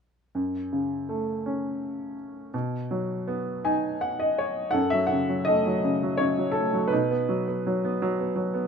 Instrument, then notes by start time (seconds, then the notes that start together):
grand piano
0.35 F#2
0.73 C#3
1.09 A3
1.46 C#4
2.54 B2
2.91 F#3
3.28 B3
3.65 D#4 G#5
4.01 F#5
4.20 D#5
4.38 C#5
4.71 F#2 A4 F#5
4.90 F#3 E5
5.07 F#5
5.12 C#3
5.29 F#3
5.45 A3 D#5
5.66 F#3
5.84 C#3
6.03 F#3
6.17 C#3 C#5
6.38 F#3
6.52 A4
6.56 A3
6.73 F#3
6.88 B4
6.92 B2 D#4
7.11 B3
7.29 F#3
7.48 B3
7.67 F#3
7.85 B3
8.02 F#3
8.20 B3
8.36 F#3
8.54 B3